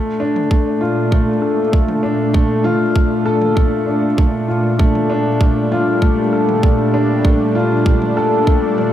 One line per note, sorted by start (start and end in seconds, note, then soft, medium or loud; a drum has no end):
0.00 8.93 A#2 medium
0.00 0.19 A3 medium
0.00 4.75 A3 medium
0.00 8.93 D4 medium
0.20 0.38 D4 medium
0.36 mid tom medium
0.50 0.80 A3 medium
0.50 kick medium
0.81 1.10 F4 medium
1.11 1.29 A3 medium
1.11 kick medium
1.11 mid tom medium
1.42 1.60 A4 medium
1.72 2.02 A3 medium
1.72 kick medium
1.88 mid tom medium
2.03 2.33 D4 medium
2.33 2.63 A3 medium
2.33 kick medium
2.64 2.82 F4 loud
2.64 mid tom medium
2.95 3.24 A3 medium
2.95 kick loud
3.26 3.55 A4 medium
3.41 mid tom medium
3.56 3.86 A3 medium
3.56 kick medium
3.86 4.05 D4 medium
4.17 4.47 A3 medium
4.17 kick loud
4.17 mid tom medium
4.48 4.78 F4 medium
4.79 8.93 G3 medium
4.79 5.09 A3 medium
4.79 kick loud
4.95 mid tom medium
5.10 5.27 D4 medium
5.41 5.70 A3 medium
5.41 kick medium
5.72 6.01 F4 medium
5.72 mid tom medium
6.02 6.20 A3 medium
6.02 kick medium
6.33 6.50 A4 medium
6.49 mid tom medium
6.63 6.92 A3 medium
6.63 kick loud
6.94 7.23 D4 medium
7.25 7.54 A3 medium
7.25 kick medium
7.25 mid tom medium
7.55 7.73 F4 medium
7.86 8.15 A3 medium
7.86 kick loud
8.02 mid tom medium
8.17 8.46 A4 medium
8.47 8.77 A3 medium
8.47 kick medium
8.78 8.93 D4 medium
8.78 mid tom medium